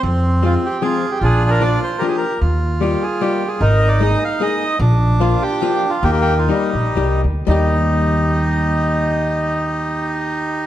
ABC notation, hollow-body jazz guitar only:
X:1
M:3/4
L:1/8
Q:"Swing" 1/4=149
K:Eb
V:1 name="Hollow-body jazz guitar"
z2 [F,A,CF] z [F,A,CF] z | z2 [F,B,DF] z [F,B,DF] z | z2 [G,B,EF] z [G,B,EF] z | z2 [A,B,EA] z [A,B,EA] z |
z2 [F,B,DF] z [F,B,DF] z | z2 [G,B,EG] z [G,B,EG] z | [G,B,EG]6- | [G,B,EG]6 |]